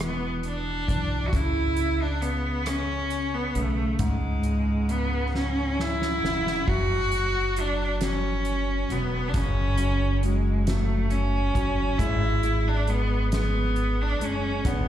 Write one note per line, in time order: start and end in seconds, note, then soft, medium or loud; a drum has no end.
0.00 0.84 E1 medium
0.00 1.29 B2 medium
0.00 0.90 E3 medium
0.00 0.43 B3 medium
0.00 cross-stick medium
0.00 closed hi-hat medium
0.43 closed hi-hat soft
0.47 1.29 D4 medium
0.88 1.30 B1 medium
0.88 1.32 E3 soft
0.88 kick medium
0.88 closed hi-hat soft
1.28 1.38 F#4 medium
1.32 3.51 C#2 medium
1.32 1.77 C#3 medium
1.32 2.04 E4 loud
1.32 kick medium
1.32 closed hi-hat medium
1.77 2.20 C#3 soft
1.77 closed hi-hat soft
2.02 2.23 D4 medium
2.21 2.66 C#3 medium
2.21 2.69 B3 medium
2.21 closed hi-hat soft
2.66 3.54 C#3 medium
2.66 3.35 C#4 medium
2.66 cross-stick loud
2.66 closed hi-hat medium
3.10 closed hi-hat soft
3.34 3.58 B3 medium
3.55 3.97 B1 medium
3.55 4.43 C#3 soft
3.55 4.00 A3 medium
3.55 closed hi-hat soft
3.99 6.19 C#2 medium
3.99 6.64 G#2 medium
3.99 kick loud
3.99 closed hi-hat medium
4.03 4.93 G#3 medium
4.43 4.87 C#3 soft
4.43 closed hi-hat soft
4.89 5.33 C#3 medium
4.89 5.34 B3 medium
4.89 closed hi-hat soft
5.35 6.22 C#3 soft
5.35 5.83 C#4 medium
5.35 snare soft
5.79 6.71 E4 loud
5.79 snare medium
6.02 snare medium
6.22 6.65 E1 medium
6.22 6.67 C#3 soft
6.22 snare medium
6.47 snare medium
6.67 8.86 F#1 medium
6.67 7.10 F#3 medium
6.67 7.61 F#4 loud
6.67 kick loud
6.67 crash medium
7.12 7.56 F#3 soft
7.12 closed hi-hat soft
7.56 8.00 F#3 medium
7.56 8.03 D4 medium
7.56 closed hi-hat soft
8.01 8.88 F#3 medium
8.01 8.93 C#4 medium
8.01 snare loud
8.01 closed hi-hat medium
8.45 closed hi-hat soft
8.89 9.34 E1 medium
8.89 9.77 F#3 soft
8.89 9.30 B3 medium
8.89 closed hi-hat soft
9.28 9.37 D4 medium
9.34 11.51 F#1 medium
9.34 11.95 C#3 medium
9.34 10.23 C#4 loud
9.34 kick loud
9.34 closed hi-hat medium
9.78 10.22 F#3 soft
9.78 closed hi-hat medium
10.23 10.66 F#3 medium
10.23 10.68 G#3 medium
10.23 closed hi-hat soft
10.67 11.54 F#3 medium
10.67 11.12 A3 medium
10.67 snare loud
10.67 closed hi-hat medium
11.10 12.00 C#4 loud
11.10 closed hi-hat soft
11.55 11.97 F#1 medium
11.55 11.98 F#3 medium
11.55 kick medium
11.55 closed hi-hat medium
11.98 14.16 G#1 medium
11.98 12.42 G#3 medium
11.98 12.69 E4 loud
11.98 kick loud
11.98 closed hi-hat medium
12.43 12.87 G#3 medium
12.43 closed hi-hat medium
12.68 12.91 D4 medium
12.87 13.32 G#3 medium
12.87 13.33 B3 medium
12.87 closed hi-hat soft
13.32 14.20 G#3 medium
13.32 14.03 B3 medium
13.32 snare loud
13.32 closed hi-hat medium
13.76 closed hi-hat soft
14.01 14.26 D4 medium
14.20 14.62 F#1 medium
14.20 14.88 G#3 soft
14.20 closed hi-hat medium
14.24 14.69 C#4 medium
14.65 14.88 G#1 medium
14.65 14.88 D3 medium
14.65 14.88 B3 medium
14.65 kick loud
14.65 closed hi-hat medium